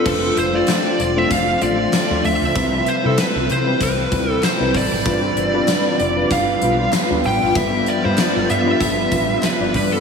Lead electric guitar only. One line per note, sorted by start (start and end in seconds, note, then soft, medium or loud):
0.07 0.38 A4 medium
0.38 0.55 C5 medium
0.55 1.00 D5 loud
1.01 1.18 D5 medium
1.18 1.31 E5 medium
1.32 1.62 F5 loud
1.63 2.25 D5 medium
2.25 2.89 E5 loud
2.88 3.06 C5 medium
3.06 3.19 A4 medium
3.20 3.51 B4 medium
3.52 3.82 C5 medium
3.83 4.31 B4 loud
4.31 4.44 A4 loud
4.45 4.76 C5 medium
4.76 6.36 D5 medium
6.32 6.90 F5 medium
7.26 7.56 G5 loud
7.57 7.88 E5 loud
7.88 8.05 D5 medium
8.05 8.19 C5 medium
8.20 8.50 D5 medium
8.51 9.46 E5 medium
9.45 9.75 B4 medium
9.76 9.92 B4 medium
9.92 10.00 A4 medium